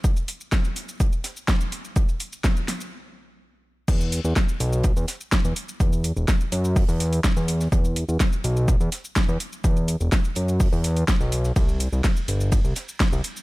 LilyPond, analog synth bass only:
\new Staff \with { instrumentName = "Analog synth bass" } { \clef bass \time 4/4 \key e \minor \tempo 4 = 125 r1 | r1 | e,8. e,16 r8 b,,8. e,16 r8. e,16 r8 | e,8. e,,16 r8 fis,8. e,8. r16 e,8. |
e,8. e,16 r8 b,,8. e,16 r8. e,16 r8 | e,8. e,,16 r8 fis,8. e,8. r16 b,,8. | c,8. c,16 r8 g,,8. c,16 r8. c,16 r8 | }